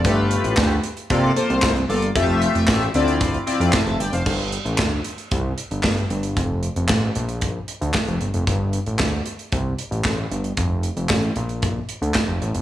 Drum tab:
CC |----------------|----------------|x---------------|----------------|
HH |x-xx--xxx-xx-xox|x-xx-xxxxxxx-xxx|--xx--xxx-xx-xxx|x-xx--xxx-xx-xxx|
CP |----x-------x---|----x-------x---|----x-------x---|----x-------x---|
SD |----o-------o---|----o-------o---|----o-------o---|----o-------o---|
BD |o---o---o---o---|o---o---o---o---|o---o---o---o---|o---o---o---o---|

CC |----------------|----------------|
HH |x-xx--xxx-xx--xx|x-xx-xxxx-xx--xx|
CP |----x-------x---|----x-------x---|
SD |----o-------o---|----o-------o---|
BD |o---o---o---o---|o---o---o---o---|